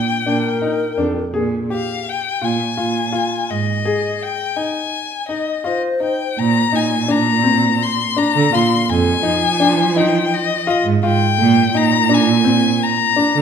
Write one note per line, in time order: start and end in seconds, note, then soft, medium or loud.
0.00 0.97 G5 medium
0.26 0.58 A#2 medium
0.26 0.47 D4 medium
0.26 1.48 A#4 medium
0.62 0.82 D#4 medium
0.98 1.14 F2 medium
0.98 1.18 D4 medium
1.34 1.66 A#2 medium
1.34 1.54 G#4 medium
1.70 2.12 G4 medium
1.70 2.10 F5 medium
2.09 2.46 G5 medium
2.41 2.58 A#2 medium
2.41 2.62 F4 medium
2.41 3.52 G#5 medium
2.77 3.10 A#2 medium
2.77 2.98 F4 medium
3.12 3.54 F4 medium
3.51 3.67 G#2 medium
3.51 4.24 D#5 medium
3.85 4.27 G#4 medium
4.22 4.58 G5 medium
4.56 4.98 D#4 medium
4.56 5.28 G#5 medium
5.29 5.50 D#4 medium
5.29 5.63 D#5 medium
5.29 5.68 D#5 medium
5.64 5.85 F4 medium
5.64 6.38 C5 medium
5.64 5.82 D#5 medium
6.00 6.21 D#4 soft
6.00 6.40 G5 medium
6.38 6.70 A#2 medium
6.38 6.77 A#5 medium
6.73 8.18 A#2 medium
6.73 6.93 D#4 medium
6.73 7.12 G#5 medium
7.08 7.29 D4 medium
7.08 7.84 A#5 medium
7.44 7.85 C4 medium
7.83 8.19 C6 medium
8.16 8.37 D4 medium
8.16 8.56 A#5 medium
8.35 8.51 D3 medium
8.53 8.69 A#2 medium
8.53 8.94 F4 medium
8.53 8.91 C6 medium
8.89 9.21 F2 medium
8.89 9.99 G#5 medium
9.23 10.69 F3 medium
9.23 9.44 D#4 medium
9.60 9.80 D4 medium
9.96 10.37 D#4 medium
9.96 10.35 G5 medium
10.33 10.68 D#5 medium
10.67 10.88 F4 medium
10.67 10.85 D#5 medium
10.84 11.01 G#2 medium
11.03 11.19 G#2 medium
11.03 11.24 F4 medium
11.03 11.78 G5 medium
11.38 11.71 A#2 medium
11.73 13.18 A#2 medium
11.73 11.95 D#4 medium
11.73 12.15 A#5 medium
12.09 12.30 D4 medium
12.14 12.85 G#5 medium
12.44 12.86 C4 medium
12.83 13.42 A#5 medium
13.16 13.37 D4 medium
13.35 13.42 D3 medium